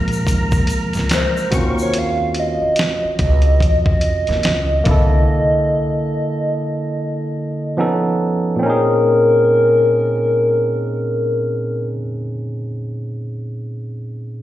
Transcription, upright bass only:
0, 0, Header, 1, 3, 480
1, 0, Start_track
1, 0, Key_signature, -5, "minor"
1, 0, Tempo, 833333
1, 1118, Time_signature, 4, 2, 24, 8
1, 8308, End_track
2, 0, Start_track
2, 0, Title_t, "Upright bass"
2, 0, Program_c, 0, 32
2, 0, Note_on_c, 0, 34, 89
2, 139, Note_off_c, 0, 34, 0
2, 157, Note_on_c, 0, 39, 96
2, 378, Note_off_c, 0, 39, 0
2, 546, Note_on_c, 0, 37, 96
2, 632, Note_off_c, 0, 37, 0
2, 880, Note_on_c, 0, 39, 106
2, 1482, Note_off_c, 0, 39, 0
2, 1840, Note_on_c, 0, 37, 98
2, 2059, Note_off_c, 0, 37, 0
2, 2077, Note_on_c, 0, 41, 98
2, 2298, Note_off_c, 0, 41, 0
2, 2469, Note_on_c, 0, 39, 100
2, 2553, Note_off_c, 0, 39, 0
2, 2563, Note_on_c, 0, 37, 93
2, 2781, Note_off_c, 0, 37, 0
2, 2803, Note_on_c, 0, 36, 117
2, 3021, Note_off_c, 0, 36, 0
2, 8308, End_track
3, 0, Start_track
3, 0, Title_t, "Muted upright bass strokes"
3, 1509, Note_on_c, 9, 29, 56
3, 1566, Note_off_c, 9, 29, 0
3, 1750, Note_on_c, 9, 29, 50
3, 1807, Note_off_c, 9, 29, 0
3, 8308, End_track
0, 0, End_of_file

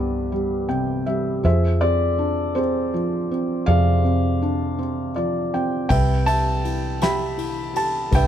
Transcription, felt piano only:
0, 0, Header, 1, 2, 480
1, 0, Start_track
1, 0, Key_signature, 0, "major"
1, 0, Tempo, 741656
1, 937, Time_signature, 6, 3, 24, 8
1, 5354, End_track
2, 0, Start_track
2, 0, Title_t, "Felt piano"
2, 0, Program_c, 0, 0
2, 0, Control_c, 0, 64, 127
2, 0, Note_on_c, 0, 43, 62
2, 0, Note_on_c, 0, 48, 55
2, 0, Note_on_c, 0, 55, 50
2, 0, Note_on_c, 0, 59, 47
2, 0, Note_on_c, 0, 64, 56
2, 0, Note_on_c, 0, 67, 54
2, 0, Note_on_c, 0, 71, 78
2, 0, Note_on_c, 0, 76, 100
2, 198, Note_off_c, 0, 55, 0
2, 208, Note_on_c, 0, 55, 58
2, 423, Note_off_c, 0, 71, 0
2, 433, Note_off_c, 0, 64, 0
2, 434, Note_off_c, 0, 67, 0
2, 443, Note_off_c, 0, 48, 0
2, 443, Note_on_c, 0, 48, 54
2, 445, Note_on_c, 0, 79, 63
2, 674, Note_off_c, 0, 79, 0
2, 681, Note_off_c, 0, 55, 0
2, 689, Note_off_c, 0, 76, 0
2, 689, Note_on_c, 0, 76, 68
2, 691, Note_on_c, 0, 55, 55
2, 909, Note_off_c, 0, 59, 0
2, 912, Note_off_c, 0, 43, 0
2, 916, Note_off_c, 0, 48, 0
2, 916, Note_off_c, 0, 76, 0
2, 927, Note_off_c, 0, 55, 0
2, 928, Note_on_c, 0, 53, 64
2, 936, Note_on_c, 0, 72, 67
2, 937, Note_on_c, 0, 76, 91
2, 940, Note_on_c, 0, 68, 67
2, 946, Control_c, 0, 64, 0
2, 1049, Control_c, 0, 64, 127
2, 1165, Note_off_c, 0, 68, 0
2, 1171, Note_on_c, 0, 74, 97
2, 1175, Note_on_c, 0, 68, 65
2, 1177, Note_on_c, 0, 60, 50
2, 1185, Note_off_c, 0, 76, 0
2, 1415, Note_on_c, 0, 62, 51
2, 1632, Note_off_c, 0, 72, 0
2, 1646, Note_off_c, 0, 60, 0
2, 1647, Note_off_c, 0, 68, 0
2, 1650, Note_on_c, 0, 72, 78
2, 1656, Note_on_c, 0, 60, 59
2, 1656, Note_on_c, 0, 68, 51
2, 1669, Note_off_c, 0, 74, 0
2, 1892, Note_off_c, 0, 53, 0
2, 1901, Note_on_c, 0, 53, 59
2, 2135, Note_off_c, 0, 60, 0
2, 2145, Note_on_c, 0, 60, 51
2, 2349, Note_off_c, 0, 72, 0
2, 2351, Note_off_c, 0, 62, 0
2, 2352, Note_off_c, 0, 68, 0
2, 2371, Note_on_c, 0, 77, 98
2, 2380, Note_on_c, 0, 48, 60
2, 2380, Note_on_c, 0, 68, 67
2, 2381, Note_on_c, 0, 74, 69
2, 2608, Note_off_c, 0, 60, 0
2, 2618, Note_on_c, 0, 60, 51
2, 2834, Note_off_c, 0, 53, 0
2, 2861, Note_on_c, 0, 62, 48
2, 3088, Note_off_c, 0, 60, 0
2, 3097, Note_on_c, 0, 60, 53
2, 3309, Note_off_c, 0, 77, 0
2, 3314, Note_off_c, 0, 68, 0
2, 3314, Note_off_c, 0, 74, 0
2, 3339, Note_on_c, 0, 74, 63
2, 3342, Note_on_c, 0, 53, 52
2, 3562, Note_off_c, 0, 74, 0
2, 3578, Note_off_c, 0, 60, 0
2, 3585, Note_on_c, 0, 79, 66
2, 3588, Note_on_c, 0, 60, 53
2, 3794, Note_off_c, 0, 48, 0
2, 3795, Note_off_c, 0, 62, 0
2, 3803, Note_off_c, 0, 79, 0
2, 3806, Note_off_c, 0, 53, 0
2, 3813, Note_on_c, 0, 79, 99
2, 3816, Note_off_c, 0, 60, 0
2, 3817, Note_on_c, 0, 48, 57
2, 3824, Note_on_c, 0, 76, 63
2, 3827, Note_on_c, 0, 71, 66
2, 3828, Control_c, 0, 64, 0
2, 3945, Control_c, 0, 64, 127
2, 4039, Note_off_c, 0, 79, 0
2, 4053, Note_off_c, 0, 76, 0
2, 4054, Note_on_c, 0, 81, 109
2, 4063, Note_on_c, 0, 76, 70
2, 4064, Note_on_c, 0, 55, 49
2, 4300, Note_on_c, 0, 64, 45
2, 4517, Note_off_c, 0, 71, 0
2, 4535, Note_on_c, 0, 67, 57
2, 4540, Note_off_c, 0, 76, 0
2, 4545, Note_on_c, 0, 83, 91
2, 4548, Note_on_c, 0, 79, 64
2, 4550, Note_on_c, 0, 76, 66
2, 4551, Note_off_c, 0, 81, 0
2, 4764, Note_off_c, 0, 64, 0
2, 4773, Note_on_c, 0, 64, 54
2, 4996, Note_off_c, 0, 55, 0
2, 4998, Note_off_c, 0, 67, 0
2, 5007, Note_on_c, 0, 67, 53
2, 5026, Note_on_c, 0, 81, 85
2, 5036, Note_off_c, 0, 83, 0
2, 5232, Note_off_c, 0, 48, 0
2, 5238, Note_off_c, 0, 76, 0
2, 5238, Note_off_c, 0, 79, 0
2, 5250, Note_on_c, 0, 43, 61
2, 5269, Note_off_c, 0, 81, 0
2, 5274, Note_on_c, 0, 79, 103
2, 5278, Note_on_c, 0, 71, 71
2, 5279, Note_on_c, 0, 76, 72
2, 5354, Note_off_c, 0, 43, 0
2, 5354, Note_off_c, 0, 64, 0
2, 5354, Note_off_c, 0, 67, 0
2, 5354, Note_off_c, 0, 71, 0
2, 5354, Note_off_c, 0, 76, 0
2, 5354, Note_off_c, 0, 79, 0
2, 5354, End_track
0, 0, End_of_file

